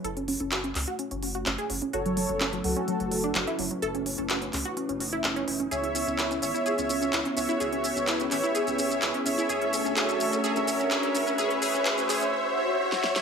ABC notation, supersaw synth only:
X:1
M:4/4
L:1/8
Q:1/4=127
K:F#m
V:1 name="Supersaw synth"
z8 | [Ac]3 [FA]4 z | z8 | [ce]3 [ce] [ce]3 [ce] |
[ce]3 [ce] [ce]3 [ce] | [ce]2 [ce]2 [ce]2 [ce]2 | [ce] [ce] [ce] [ce] [ce] [ce] [ce] [ce] |]